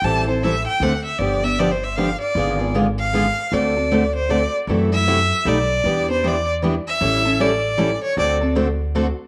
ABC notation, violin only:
X:1
M:3/4
L:1/8
Q:"Swing" 1/4=155
K:Dmix
V:1 name="Violin"
a c e g f e | d e (3d c e =f d- | d2 z ^e3 | d3 c d z |
z e3 d2- | d c d z2 e- | e2 d3 ^c | d z4 z |]